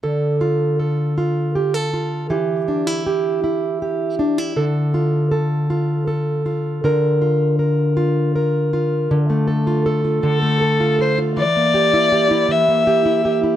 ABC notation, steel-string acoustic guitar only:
X:1
M:6/8
L:1/16
Q:3/8=53
K:Dm
V:1 name="Steel-string acoustic guitar"
[D,A]2 F2 A2 F2 G A F2 | [E,G]2 D E G2 E2 G2 D E | [D,A]2 F2 A2 F2 A2 F2 | [D,B]2 F2 B2 F2 B2 F2 |
D, A, A F A F D, A, A F A F | E, B, G E G E E, B, G E G E |]